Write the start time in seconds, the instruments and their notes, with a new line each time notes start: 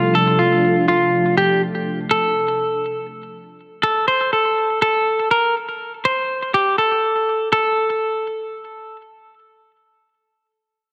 Already playing: ambient pad C3 F3 A3 D4 A4, clean electric guitar F4
0.15 clean electric guitar A4
0.39 clean electric guitar F4
0.88 clean electric guitar F4
1.37 clean electric guitar G4
2.11 clean electric guitar A4
3.83 clean electric guitar A4
4.08 clean electric guitar C5
4.33 clean electric guitar A4
4.82 clean electric guitar A4
5.31 clean electric guitar A#4
6.05 clean electric guitar C5
6.54 clean electric guitar G4
6.78 clean electric guitar A4
7.53 clean electric guitar A4